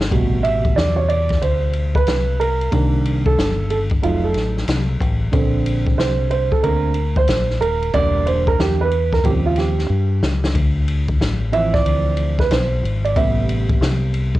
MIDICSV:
0, 0, Header, 1, 5, 480
1, 0, Start_track
1, 0, Key_signature, 0, "minor"
1, 0, Tempo, 652174
1, 85, Time_signature, 4, 2, 24, 8
1, 10598, End_track
2, 0, Start_track
2, 0, Title_t, "Grand piano"
2, 0, Program_c, 0, 0
2, 80, Note_on_c, 0, 48, 56
2, 85, Note_on_c, 0, 55, 51
2, 89, Note_on_c, 0, 47, 64
2, 317, Note_on_c, 0, 76, 100
2, 560, Note_on_c, 0, 74, 92
2, 568, Note_off_c, 0, 76, 0
2, 708, Note_on_c, 0, 73, 78
2, 722, Note_off_c, 0, 74, 0
2, 799, Note_on_c, 0, 74, 90
2, 802, Note_off_c, 0, 73, 0
2, 1042, Note_on_c, 0, 72, 85
2, 1049, Note_off_c, 0, 74, 0
2, 1438, Note_on_c, 0, 71, 91
2, 1450, Note_off_c, 0, 72, 0
2, 1765, Note_on_c, 0, 70, 93
2, 1774, Note_off_c, 0, 71, 0
2, 1973, Note_off_c, 0, 48, 0
2, 1975, Note_off_c, 0, 55, 0
2, 1977, Note_off_c, 0, 47, 0
2, 1997, Note_on_c, 0, 51, 55
2, 2001, Note_on_c, 0, 58, 53
2, 2005, Note_on_c, 0, 62, 57
2, 2370, Note_off_c, 0, 70, 0
2, 2399, Note_on_c, 0, 69, 99
2, 2702, Note_off_c, 0, 69, 0
2, 2726, Note_on_c, 0, 69, 84
2, 2780, Note_off_c, 0, 69, 0
2, 2931, Note_off_c, 0, 51, 0
2, 2933, Note_off_c, 0, 58, 0
2, 2936, Note_off_c, 0, 62, 0
2, 2957, Note_on_c, 0, 54, 46
2, 2962, Note_on_c, 0, 57, 48
2, 2965, Note_on_c, 0, 63, 52
2, 2967, Note_on_c, 0, 65, 79
2, 3119, Note_on_c, 0, 69, 77
2, 3125, Note_off_c, 0, 65, 0
2, 3570, Note_off_c, 0, 69, 0
2, 3892, Note_off_c, 0, 54, 0
2, 3894, Note_off_c, 0, 57, 0
2, 3895, Note_off_c, 0, 63, 0
2, 3914, Note_on_c, 0, 50, 54
2, 3921, Note_on_c, 0, 69, 48
2, 3924, Note_on_c, 0, 60, 65
2, 4401, Note_on_c, 0, 72, 93
2, 4629, Note_off_c, 0, 72, 0
2, 4640, Note_on_c, 0, 72, 92
2, 4785, Note_off_c, 0, 69, 0
2, 4797, Note_on_c, 0, 69, 86
2, 4802, Note_off_c, 0, 72, 0
2, 4867, Note_off_c, 0, 50, 0
2, 4871, Note_off_c, 0, 60, 0
2, 4877, Note_off_c, 0, 69, 0
2, 4878, Note_on_c, 0, 50, 48
2, 4880, Note_on_c, 0, 58, 40
2, 4882, Note_on_c, 0, 60, 49
2, 4883, Note_on_c, 0, 70, 87
2, 5097, Note_off_c, 0, 50, 0
2, 5098, Note_off_c, 0, 58, 0
2, 5099, Note_off_c, 0, 60, 0
2, 5277, Note_on_c, 0, 72, 105
2, 5291, Note_off_c, 0, 70, 0
2, 5581, Note_off_c, 0, 72, 0
2, 5601, Note_on_c, 0, 70, 92
2, 5840, Note_on_c, 0, 50, 55
2, 5844, Note_on_c, 0, 55, 52
2, 5845, Note_on_c, 0, 74, 114
2, 5850, Note_off_c, 0, 70, 0
2, 5850, Note_on_c, 0, 58, 62
2, 6082, Note_on_c, 0, 72, 99
2, 6092, Note_off_c, 0, 74, 0
2, 6241, Note_on_c, 0, 70, 94
2, 6243, Note_off_c, 0, 72, 0
2, 6328, Note_off_c, 0, 70, 0
2, 6329, Note_on_c, 0, 67, 93
2, 6485, Note_on_c, 0, 71, 90
2, 6486, Note_off_c, 0, 67, 0
2, 6533, Note_off_c, 0, 50, 0
2, 6535, Note_off_c, 0, 55, 0
2, 6538, Note_off_c, 0, 58, 0
2, 6705, Note_off_c, 0, 71, 0
2, 6723, Note_on_c, 0, 70, 82
2, 6803, Note_on_c, 0, 49, 47
2, 6803, Note_on_c, 0, 53, 45
2, 6808, Note_on_c, 0, 55, 47
2, 6808, Note_on_c, 0, 67, 79
2, 6809, Note_off_c, 0, 70, 0
2, 6812, Note_on_c, 0, 60, 57
2, 6845, Note_off_c, 0, 67, 0
2, 6961, Note_on_c, 0, 65, 81
2, 7048, Note_off_c, 0, 65, 0
2, 7048, Note_on_c, 0, 67, 78
2, 7149, Note_off_c, 0, 49, 0
2, 7149, Note_off_c, 0, 53, 0
2, 7152, Note_off_c, 0, 55, 0
2, 7154, Note_off_c, 0, 60, 0
2, 7737, Note_off_c, 0, 67, 0
2, 8481, Note_on_c, 0, 52, 61
2, 8486, Note_on_c, 0, 53, 50
2, 8486, Note_on_c, 0, 76, 105
2, 8490, Note_on_c, 0, 60, 58
2, 8638, Note_on_c, 0, 74, 97
2, 8645, Note_off_c, 0, 76, 0
2, 9124, Note_on_c, 0, 71, 85
2, 9133, Note_off_c, 0, 74, 0
2, 9208, Note_on_c, 0, 72, 85
2, 9209, Note_off_c, 0, 71, 0
2, 9602, Note_on_c, 0, 74, 74
2, 9613, Note_off_c, 0, 72, 0
2, 9653, Note_off_c, 0, 52, 0
2, 9656, Note_off_c, 0, 53, 0
2, 9658, Note_off_c, 0, 60, 0
2, 9681, Note_on_c, 0, 48, 52
2, 9687, Note_on_c, 0, 55, 52
2, 9689, Note_off_c, 0, 74, 0
2, 9690, Note_on_c, 0, 76, 87
2, 9691, Note_on_c, 0, 59, 60
2, 10138, Note_off_c, 0, 76, 0
2, 10598, Note_off_c, 0, 48, 0
2, 10598, Note_off_c, 0, 55, 0
2, 10598, Note_off_c, 0, 59, 0
2, 10598, End_track
3, 0, Start_track
3, 0, Title_t, "Fingered electric bass"
3, 0, Program_c, 1, 33
3, 84, Note_on_c, 1, 33, 117
3, 540, Note_off_c, 1, 33, 0
3, 564, Note_on_c, 1, 40, 78
3, 1020, Note_off_c, 1, 40, 0
3, 1048, Note_on_c, 1, 38, 84
3, 1502, Note_off_c, 1, 38, 0
3, 1524, Note_on_c, 1, 36, 86
3, 1980, Note_off_c, 1, 36, 0
3, 2004, Note_on_c, 1, 36, 122
3, 2460, Note_off_c, 1, 36, 0
3, 2485, Note_on_c, 1, 31, 91
3, 2941, Note_off_c, 1, 31, 0
3, 2965, Note_on_c, 1, 29, 89
3, 3193, Note_off_c, 1, 29, 0
3, 3206, Note_on_c, 1, 33, 90
3, 3433, Note_off_c, 1, 33, 0
3, 3444, Note_on_c, 1, 36, 93
3, 3673, Note_off_c, 1, 36, 0
3, 3684, Note_on_c, 1, 33, 85
3, 3912, Note_off_c, 1, 33, 0
3, 3923, Note_on_c, 1, 34, 107
3, 4380, Note_off_c, 1, 34, 0
3, 4405, Note_on_c, 1, 36, 88
3, 4780, Note_off_c, 1, 36, 0
3, 4886, Note_on_c, 1, 38, 90
3, 5342, Note_off_c, 1, 38, 0
3, 5361, Note_on_c, 1, 34, 87
3, 5591, Note_off_c, 1, 34, 0
3, 5601, Note_on_c, 1, 27, 83
3, 5831, Note_off_c, 1, 27, 0
3, 5845, Note_on_c, 1, 28, 113
3, 6301, Note_off_c, 1, 28, 0
3, 6323, Note_on_c, 1, 40, 81
3, 6780, Note_off_c, 1, 40, 0
3, 6801, Note_on_c, 1, 39, 86
3, 7259, Note_off_c, 1, 39, 0
3, 7284, Note_on_c, 1, 43, 89
3, 7512, Note_off_c, 1, 43, 0
3, 7525, Note_on_c, 1, 37, 79
3, 7753, Note_off_c, 1, 37, 0
3, 7765, Note_on_c, 1, 38, 122
3, 8221, Note_off_c, 1, 38, 0
3, 8246, Note_on_c, 1, 33, 78
3, 8701, Note_off_c, 1, 33, 0
3, 8726, Note_on_c, 1, 38, 76
3, 9181, Note_off_c, 1, 38, 0
3, 9207, Note_on_c, 1, 35, 97
3, 9434, Note_off_c, 1, 35, 0
3, 9444, Note_on_c, 1, 32, 100
3, 9672, Note_off_c, 1, 32, 0
3, 9686, Note_on_c, 1, 33, 124
3, 10141, Note_off_c, 1, 33, 0
3, 10162, Note_on_c, 1, 36, 97
3, 10598, Note_off_c, 1, 36, 0
3, 10598, End_track
4, 0, Start_track
4, 0, Title_t, "Muted fingered electric bass strokes"
4, 4797, Note_on_c, 9, 29, 48
4, 4870, Note_off_c, 9, 29, 0
4, 10598, End_track
5, 0, Start_track
5, 0, Title_t, "Drums"
5, 5, Note_on_c, 9, 38, 94
5, 79, Note_off_c, 9, 38, 0
5, 84, Note_on_c, 9, 36, 101
5, 86, Note_on_c, 9, 51, 74
5, 158, Note_off_c, 9, 36, 0
5, 159, Note_off_c, 9, 51, 0
5, 327, Note_on_c, 9, 51, 67
5, 401, Note_off_c, 9, 51, 0
5, 477, Note_on_c, 9, 36, 94
5, 477, Note_on_c, 9, 51, 36
5, 550, Note_off_c, 9, 36, 0
5, 551, Note_off_c, 9, 51, 0
5, 571, Note_on_c, 9, 38, 103
5, 577, Note_on_c, 9, 44, 45
5, 577, Note_on_c, 9, 51, 63
5, 645, Note_off_c, 9, 38, 0
5, 650, Note_off_c, 9, 44, 0
5, 650, Note_off_c, 9, 51, 0
5, 806, Note_on_c, 9, 51, 60
5, 879, Note_off_c, 9, 51, 0
5, 949, Note_on_c, 9, 51, 44
5, 960, Note_on_c, 9, 36, 87
5, 966, Note_on_c, 9, 38, 32
5, 1022, Note_off_c, 9, 51, 0
5, 1033, Note_off_c, 9, 36, 0
5, 1040, Note_off_c, 9, 38, 0
5, 1047, Note_on_c, 9, 51, 75
5, 1120, Note_off_c, 9, 51, 0
5, 1275, Note_on_c, 9, 51, 56
5, 1348, Note_off_c, 9, 51, 0
5, 1435, Note_on_c, 9, 36, 91
5, 1451, Note_on_c, 9, 51, 39
5, 1508, Note_off_c, 9, 36, 0
5, 1521, Note_off_c, 9, 51, 0
5, 1521, Note_on_c, 9, 44, 47
5, 1521, Note_on_c, 9, 51, 69
5, 1531, Note_on_c, 9, 38, 106
5, 1594, Note_off_c, 9, 44, 0
5, 1594, Note_off_c, 9, 51, 0
5, 1605, Note_off_c, 9, 38, 0
5, 1773, Note_on_c, 9, 51, 62
5, 1847, Note_off_c, 9, 51, 0
5, 1923, Note_on_c, 9, 51, 43
5, 1996, Note_off_c, 9, 51, 0
5, 2004, Note_on_c, 9, 36, 106
5, 2004, Note_on_c, 9, 51, 77
5, 2078, Note_off_c, 9, 36, 0
5, 2078, Note_off_c, 9, 51, 0
5, 2248, Note_on_c, 9, 51, 67
5, 2321, Note_off_c, 9, 51, 0
5, 2397, Note_on_c, 9, 36, 97
5, 2471, Note_off_c, 9, 36, 0
5, 2492, Note_on_c, 9, 38, 100
5, 2497, Note_on_c, 9, 44, 44
5, 2497, Note_on_c, 9, 51, 67
5, 2565, Note_off_c, 9, 38, 0
5, 2571, Note_off_c, 9, 44, 0
5, 2571, Note_off_c, 9, 51, 0
5, 2724, Note_on_c, 9, 51, 61
5, 2797, Note_off_c, 9, 51, 0
5, 2866, Note_on_c, 9, 51, 41
5, 2879, Note_on_c, 9, 36, 92
5, 2940, Note_off_c, 9, 51, 0
5, 2952, Note_off_c, 9, 36, 0
5, 2967, Note_on_c, 9, 51, 78
5, 3041, Note_off_c, 9, 51, 0
5, 3194, Note_on_c, 9, 51, 58
5, 3211, Note_on_c, 9, 38, 39
5, 3268, Note_off_c, 9, 51, 0
5, 3285, Note_off_c, 9, 38, 0
5, 3365, Note_on_c, 9, 38, 35
5, 3439, Note_off_c, 9, 38, 0
5, 3441, Note_on_c, 9, 44, 50
5, 3441, Note_on_c, 9, 51, 75
5, 3451, Note_on_c, 9, 38, 118
5, 3515, Note_off_c, 9, 44, 0
5, 3515, Note_off_c, 9, 51, 0
5, 3525, Note_off_c, 9, 38, 0
5, 3684, Note_on_c, 9, 36, 89
5, 3691, Note_on_c, 9, 51, 66
5, 3757, Note_off_c, 9, 36, 0
5, 3764, Note_off_c, 9, 51, 0
5, 3922, Note_on_c, 9, 51, 76
5, 3923, Note_on_c, 9, 36, 119
5, 3996, Note_off_c, 9, 36, 0
5, 3996, Note_off_c, 9, 51, 0
5, 4165, Note_on_c, 9, 51, 69
5, 4238, Note_off_c, 9, 51, 0
5, 4316, Note_on_c, 9, 36, 93
5, 4390, Note_off_c, 9, 36, 0
5, 4412, Note_on_c, 9, 38, 95
5, 4417, Note_on_c, 9, 44, 47
5, 4417, Note_on_c, 9, 51, 64
5, 4485, Note_off_c, 9, 38, 0
5, 4491, Note_off_c, 9, 44, 0
5, 4491, Note_off_c, 9, 51, 0
5, 4641, Note_on_c, 9, 51, 54
5, 4715, Note_off_c, 9, 51, 0
5, 4797, Note_on_c, 9, 36, 92
5, 4871, Note_off_c, 9, 36, 0
5, 4884, Note_on_c, 9, 51, 66
5, 4958, Note_off_c, 9, 51, 0
5, 5109, Note_on_c, 9, 51, 59
5, 5183, Note_off_c, 9, 51, 0
5, 5272, Note_on_c, 9, 36, 101
5, 5346, Note_off_c, 9, 36, 0
5, 5356, Note_on_c, 9, 44, 50
5, 5356, Note_on_c, 9, 51, 73
5, 5366, Note_on_c, 9, 38, 108
5, 5430, Note_off_c, 9, 44, 0
5, 5430, Note_off_c, 9, 51, 0
5, 5440, Note_off_c, 9, 38, 0
5, 5523, Note_on_c, 9, 38, 31
5, 5597, Note_off_c, 9, 38, 0
5, 5610, Note_on_c, 9, 51, 63
5, 5684, Note_off_c, 9, 51, 0
5, 5760, Note_on_c, 9, 51, 46
5, 5834, Note_off_c, 9, 51, 0
5, 5844, Note_on_c, 9, 36, 102
5, 5844, Note_on_c, 9, 51, 72
5, 5917, Note_off_c, 9, 36, 0
5, 5918, Note_off_c, 9, 51, 0
5, 6085, Note_on_c, 9, 51, 67
5, 6159, Note_off_c, 9, 51, 0
5, 6236, Note_on_c, 9, 36, 100
5, 6310, Note_off_c, 9, 36, 0
5, 6329, Note_on_c, 9, 38, 113
5, 6335, Note_on_c, 9, 44, 48
5, 6335, Note_on_c, 9, 51, 56
5, 6402, Note_off_c, 9, 38, 0
5, 6408, Note_off_c, 9, 44, 0
5, 6408, Note_off_c, 9, 51, 0
5, 6562, Note_on_c, 9, 51, 62
5, 6636, Note_off_c, 9, 51, 0
5, 6718, Note_on_c, 9, 36, 90
5, 6723, Note_on_c, 9, 38, 33
5, 6792, Note_off_c, 9, 36, 0
5, 6797, Note_off_c, 9, 38, 0
5, 6801, Note_on_c, 9, 36, 86
5, 6805, Note_on_c, 9, 51, 70
5, 6875, Note_off_c, 9, 36, 0
5, 6879, Note_off_c, 9, 51, 0
5, 7034, Note_on_c, 9, 51, 61
5, 7051, Note_on_c, 9, 38, 38
5, 7108, Note_off_c, 9, 51, 0
5, 7125, Note_off_c, 9, 38, 0
5, 7204, Note_on_c, 9, 38, 35
5, 7212, Note_on_c, 9, 51, 41
5, 7278, Note_off_c, 9, 38, 0
5, 7285, Note_off_c, 9, 51, 0
5, 7527, Note_on_c, 9, 38, 87
5, 7601, Note_off_c, 9, 38, 0
5, 7683, Note_on_c, 9, 38, 97
5, 7756, Note_off_c, 9, 38, 0
5, 7765, Note_on_c, 9, 36, 122
5, 7765, Note_on_c, 9, 51, 86
5, 7838, Note_off_c, 9, 36, 0
5, 7839, Note_off_c, 9, 51, 0
5, 8006, Note_on_c, 9, 51, 71
5, 8079, Note_off_c, 9, 51, 0
5, 8155, Note_on_c, 9, 51, 40
5, 8158, Note_on_c, 9, 36, 93
5, 8229, Note_off_c, 9, 51, 0
5, 8232, Note_off_c, 9, 36, 0
5, 8252, Note_on_c, 9, 38, 94
5, 8258, Note_on_c, 9, 44, 43
5, 8258, Note_on_c, 9, 51, 64
5, 8326, Note_off_c, 9, 38, 0
5, 8332, Note_off_c, 9, 44, 0
5, 8332, Note_off_c, 9, 51, 0
5, 8487, Note_on_c, 9, 51, 55
5, 8560, Note_off_c, 9, 51, 0
5, 8641, Note_on_c, 9, 36, 98
5, 8644, Note_on_c, 9, 38, 31
5, 8714, Note_off_c, 9, 36, 0
5, 8718, Note_off_c, 9, 38, 0
5, 8728, Note_on_c, 9, 51, 74
5, 8802, Note_off_c, 9, 51, 0
5, 8955, Note_on_c, 9, 51, 63
5, 9028, Note_off_c, 9, 51, 0
5, 9117, Note_on_c, 9, 36, 97
5, 9125, Note_on_c, 9, 38, 35
5, 9190, Note_off_c, 9, 36, 0
5, 9199, Note_off_c, 9, 38, 0
5, 9204, Note_on_c, 9, 44, 55
5, 9204, Note_on_c, 9, 51, 78
5, 9214, Note_on_c, 9, 38, 103
5, 9278, Note_off_c, 9, 44, 0
5, 9278, Note_off_c, 9, 51, 0
5, 9288, Note_off_c, 9, 38, 0
5, 9458, Note_on_c, 9, 51, 62
5, 9532, Note_off_c, 9, 51, 0
5, 9606, Note_on_c, 9, 51, 43
5, 9680, Note_off_c, 9, 51, 0
5, 9687, Note_on_c, 9, 36, 117
5, 9688, Note_on_c, 9, 51, 83
5, 9760, Note_off_c, 9, 36, 0
5, 9761, Note_off_c, 9, 51, 0
5, 9928, Note_on_c, 9, 51, 71
5, 10002, Note_off_c, 9, 51, 0
5, 10077, Note_on_c, 9, 51, 41
5, 10079, Note_on_c, 9, 36, 94
5, 10151, Note_off_c, 9, 51, 0
5, 10152, Note_off_c, 9, 36, 0
5, 10173, Note_on_c, 9, 38, 102
5, 10178, Note_on_c, 9, 44, 44
5, 10178, Note_on_c, 9, 51, 69
5, 10246, Note_off_c, 9, 38, 0
5, 10252, Note_off_c, 9, 44, 0
5, 10252, Note_off_c, 9, 51, 0
5, 10404, Note_on_c, 9, 51, 61
5, 10478, Note_off_c, 9, 51, 0
5, 10560, Note_on_c, 9, 36, 93
5, 10598, Note_off_c, 9, 36, 0
5, 10598, End_track
0, 0, End_of_file